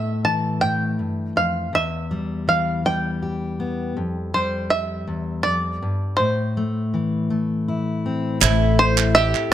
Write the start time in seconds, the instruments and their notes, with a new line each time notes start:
Already playing: steel-string acoustic guitar A2 A3, five-string banjo E5
0.24 steel-string acoustic guitar E3, five-string banjo A5
0.61 steel-string acoustic guitar A2, five-string banjo G5
0.99 steel-string acoustic guitar G2
1.36 steel-string acoustic guitar F2, five-string banjo F5
1.73 steel-string acoustic guitar E2, five-string banjo E5
2.11 steel-string acoustic guitar G3
2.48 steel-string acoustic guitar E3, five-string banjo F5
2.85 steel-string acoustic guitar G3, five-string banjo G5
3.22 steel-string acoustic guitar G4
3.60 steel-string acoustic guitar B3
3.97 steel-string acoustic guitar F2
4.34 steel-string acoustic guitar G3, five-string banjo C5
4.70 five-string banjo E5
5.07 steel-string acoustic guitar E2
5.43 steel-string acoustic guitar F2, five-string banjo D5
5.82 steel-string acoustic guitar G2
6.17 steel-string acoustic guitar A2, five-string banjo C5
6.57 steel-string acoustic guitar A3
6.94 steel-string acoustic guitar E3
7.30 steel-string acoustic guitar A3
7.68 steel-string acoustic guitar E4
8.06 steel-string acoustic guitar C4
8.40 upright bass A1, twelve-string acoustic guitar A2 E3 A3 C4 E4 A4, mandolin E4, clap
8.79 five-string banjo C5
8.98 clap
9.15 twelve-string acoustic guitar A3 C4 E4 A4, mandolin G4, five-string banjo E5
9.35 clap